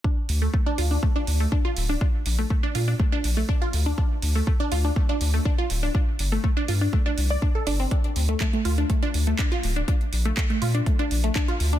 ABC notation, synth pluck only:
X:1
M:4/4
L:1/16
Q:1/4=122
K:Bblyd
V:1 name="Synth pluck"
D z2 A, A, D F D A, D z A, D F z D | D z2 A, A, D F D A, D z A, D F z D | D z2 A, A, D F D A, D z A, D F z D | D z2 A, A, D F D A, D z d D A D C |
D z2 A, A, A, F D A, D z A, D F z D | D z2 A, A, A, F D A, D z A, D F z D |]